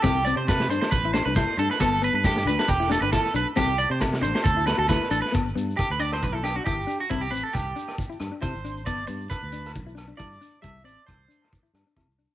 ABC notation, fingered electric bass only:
X:1
M:4/4
L:1/16
Q:"Swing 16ths" 1/4=136
K:G
V:1 name="Fingered electric bass" clef=bass
C,,3 C,3 G,, z A,,,3 C,,2 z G,, z | G,,,3 G,,3 D,, z E,,,3 G,,,2 z B,,, z | C,,3 C,3 A,,, z D,,3 D,,2 z A,,, z | G,,,2 G,,2 z D,,3 B,,,4 G,,,2 z2 |
C,,2 A,,, z C,,2 z4 G,, z C, _A,,,3 | G,,,2 G,,2 z D,,3 B,,,4 G,,2 z2 | C,,2 A,,, z C,,2 z4 G,, z C, C,,2 z |]